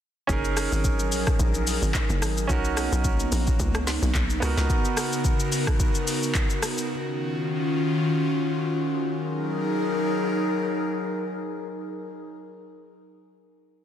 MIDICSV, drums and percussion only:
0, 0, Header, 1, 2, 480
1, 0, Start_track
1, 0, Key_signature, 6, "major"
1, 0, Tempo, 550459
1, 255, Time_signature, 4, 2, 24, 8
1, 12074, End_track
2, 0, Start_track
2, 0, Title_t, "Drums"
2, 256, Note_on_c, 9, 36, 119
2, 256, Note_on_c, 9, 82, 80
2, 343, Note_off_c, 9, 36, 0
2, 344, Note_off_c, 9, 82, 0
2, 388, Note_on_c, 9, 82, 54
2, 476, Note_off_c, 9, 82, 0
2, 495, Note_on_c, 9, 37, 88
2, 496, Note_on_c, 9, 46, 60
2, 496, Note_on_c, 9, 82, 100
2, 582, Note_off_c, 9, 37, 0
2, 583, Note_off_c, 9, 46, 0
2, 583, Note_off_c, 9, 82, 0
2, 631, Note_on_c, 9, 82, 51
2, 718, Note_off_c, 9, 82, 0
2, 736, Note_on_c, 9, 36, 92
2, 736, Note_on_c, 9, 82, 75
2, 823, Note_off_c, 9, 36, 0
2, 823, Note_off_c, 9, 82, 0
2, 867, Note_on_c, 9, 82, 57
2, 954, Note_off_c, 9, 82, 0
2, 975, Note_on_c, 9, 46, 52
2, 975, Note_on_c, 9, 82, 84
2, 1063, Note_off_c, 9, 46, 0
2, 1063, Note_off_c, 9, 82, 0
2, 1107, Note_on_c, 9, 37, 90
2, 1107, Note_on_c, 9, 82, 55
2, 1110, Note_on_c, 9, 36, 100
2, 1194, Note_off_c, 9, 37, 0
2, 1194, Note_off_c, 9, 82, 0
2, 1198, Note_off_c, 9, 36, 0
2, 1216, Note_on_c, 9, 36, 114
2, 1216, Note_on_c, 9, 82, 80
2, 1303, Note_off_c, 9, 36, 0
2, 1304, Note_off_c, 9, 82, 0
2, 1346, Note_on_c, 9, 82, 60
2, 1433, Note_off_c, 9, 82, 0
2, 1457, Note_on_c, 9, 46, 57
2, 1457, Note_on_c, 9, 82, 94
2, 1544, Note_off_c, 9, 46, 0
2, 1544, Note_off_c, 9, 82, 0
2, 1591, Note_on_c, 9, 82, 51
2, 1678, Note_off_c, 9, 82, 0
2, 1695, Note_on_c, 9, 39, 91
2, 1697, Note_on_c, 9, 36, 92
2, 1698, Note_on_c, 9, 82, 75
2, 1782, Note_off_c, 9, 39, 0
2, 1784, Note_off_c, 9, 36, 0
2, 1786, Note_off_c, 9, 82, 0
2, 1829, Note_on_c, 9, 82, 53
2, 1916, Note_off_c, 9, 82, 0
2, 1937, Note_on_c, 9, 37, 93
2, 1939, Note_on_c, 9, 46, 57
2, 1939, Note_on_c, 9, 82, 97
2, 2025, Note_off_c, 9, 37, 0
2, 2026, Note_off_c, 9, 46, 0
2, 2026, Note_off_c, 9, 82, 0
2, 2071, Note_on_c, 9, 82, 56
2, 2158, Note_off_c, 9, 82, 0
2, 2176, Note_on_c, 9, 36, 124
2, 2177, Note_on_c, 9, 82, 83
2, 2263, Note_off_c, 9, 36, 0
2, 2264, Note_off_c, 9, 82, 0
2, 2308, Note_on_c, 9, 82, 53
2, 2395, Note_off_c, 9, 82, 0
2, 2415, Note_on_c, 9, 37, 93
2, 2416, Note_on_c, 9, 46, 59
2, 2416, Note_on_c, 9, 82, 102
2, 2503, Note_off_c, 9, 37, 0
2, 2503, Note_off_c, 9, 46, 0
2, 2503, Note_off_c, 9, 82, 0
2, 2550, Note_on_c, 9, 82, 55
2, 2637, Note_off_c, 9, 82, 0
2, 2655, Note_on_c, 9, 36, 96
2, 2655, Note_on_c, 9, 82, 77
2, 2742, Note_off_c, 9, 36, 0
2, 2742, Note_off_c, 9, 82, 0
2, 2787, Note_on_c, 9, 82, 57
2, 2874, Note_off_c, 9, 82, 0
2, 2895, Note_on_c, 9, 46, 50
2, 2895, Note_on_c, 9, 82, 87
2, 2982, Note_off_c, 9, 46, 0
2, 2982, Note_off_c, 9, 82, 0
2, 3027, Note_on_c, 9, 82, 55
2, 3030, Note_on_c, 9, 36, 98
2, 3114, Note_off_c, 9, 82, 0
2, 3117, Note_off_c, 9, 36, 0
2, 3136, Note_on_c, 9, 36, 115
2, 3136, Note_on_c, 9, 82, 86
2, 3223, Note_off_c, 9, 36, 0
2, 3223, Note_off_c, 9, 82, 0
2, 3266, Note_on_c, 9, 82, 60
2, 3267, Note_on_c, 9, 37, 107
2, 3354, Note_off_c, 9, 82, 0
2, 3355, Note_off_c, 9, 37, 0
2, 3376, Note_on_c, 9, 38, 61
2, 3377, Note_on_c, 9, 46, 55
2, 3377, Note_on_c, 9, 82, 97
2, 3463, Note_off_c, 9, 38, 0
2, 3465, Note_off_c, 9, 46, 0
2, 3465, Note_off_c, 9, 82, 0
2, 3511, Note_on_c, 9, 82, 51
2, 3598, Note_off_c, 9, 82, 0
2, 3616, Note_on_c, 9, 39, 88
2, 3617, Note_on_c, 9, 36, 87
2, 3619, Note_on_c, 9, 82, 74
2, 3704, Note_off_c, 9, 36, 0
2, 3704, Note_off_c, 9, 39, 0
2, 3707, Note_off_c, 9, 82, 0
2, 3749, Note_on_c, 9, 82, 52
2, 3836, Note_off_c, 9, 82, 0
2, 3858, Note_on_c, 9, 37, 93
2, 3859, Note_on_c, 9, 46, 61
2, 3859, Note_on_c, 9, 82, 94
2, 3945, Note_off_c, 9, 37, 0
2, 3946, Note_off_c, 9, 46, 0
2, 3946, Note_off_c, 9, 82, 0
2, 3990, Note_on_c, 9, 38, 70
2, 3991, Note_on_c, 9, 82, 59
2, 4077, Note_off_c, 9, 38, 0
2, 4078, Note_off_c, 9, 82, 0
2, 4095, Note_on_c, 9, 36, 120
2, 4096, Note_on_c, 9, 82, 80
2, 4183, Note_off_c, 9, 36, 0
2, 4184, Note_off_c, 9, 82, 0
2, 4227, Note_on_c, 9, 82, 54
2, 4314, Note_off_c, 9, 82, 0
2, 4334, Note_on_c, 9, 37, 94
2, 4335, Note_on_c, 9, 46, 60
2, 4335, Note_on_c, 9, 82, 98
2, 4421, Note_off_c, 9, 37, 0
2, 4422, Note_off_c, 9, 46, 0
2, 4422, Note_off_c, 9, 82, 0
2, 4469, Note_on_c, 9, 82, 54
2, 4557, Note_off_c, 9, 82, 0
2, 4574, Note_on_c, 9, 82, 77
2, 4575, Note_on_c, 9, 36, 90
2, 4661, Note_off_c, 9, 82, 0
2, 4662, Note_off_c, 9, 36, 0
2, 4706, Note_on_c, 9, 82, 57
2, 4793, Note_off_c, 9, 82, 0
2, 4814, Note_on_c, 9, 46, 50
2, 4814, Note_on_c, 9, 82, 84
2, 4902, Note_off_c, 9, 46, 0
2, 4902, Note_off_c, 9, 82, 0
2, 4946, Note_on_c, 9, 37, 93
2, 4946, Note_on_c, 9, 82, 55
2, 4950, Note_on_c, 9, 36, 94
2, 5033, Note_off_c, 9, 37, 0
2, 5033, Note_off_c, 9, 82, 0
2, 5037, Note_off_c, 9, 36, 0
2, 5055, Note_on_c, 9, 36, 112
2, 5056, Note_on_c, 9, 82, 81
2, 5143, Note_off_c, 9, 36, 0
2, 5143, Note_off_c, 9, 82, 0
2, 5186, Note_on_c, 9, 82, 60
2, 5273, Note_off_c, 9, 82, 0
2, 5297, Note_on_c, 9, 46, 56
2, 5297, Note_on_c, 9, 82, 99
2, 5384, Note_off_c, 9, 46, 0
2, 5384, Note_off_c, 9, 82, 0
2, 5431, Note_on_c, 9, 82, 51
2, 5518, Note_off_c, 9, 82, 0
2, 5535, Note_on_c, 9, 39, 91
2, 5536, Note_on_c, 9, 36, 94
2, 5538, Note_on_c, 9, 82, 72
2, 5622, Note_off_c, 9, 39, 0
2, 5624, Note_off_c, 9, 36, 0
2, 5625, Note_off_c, 9, 82, 0
2, 5668, Note_on_c, 9, 82, 53
2, 5755, Note_off_c, 9, 82, 0
2, 5777, Note_on_c, 9, 37, 94
2, 5778, Note_on_c, 9, 46, 56
2, 5778, Note_on_c, 9, 82, 103
2, 5864, Note_off_c, 9, 37, 0
2, 5866, Note_off_c, 9, 46, 0
2, 5866, Note_off_c, 9, 82, 0
2, 5911, Note_on_c, 9, 82, 57
2, 5998, Note_off_c, 9, 82, 0
2, 12074, End_track
0, 0, End_of_file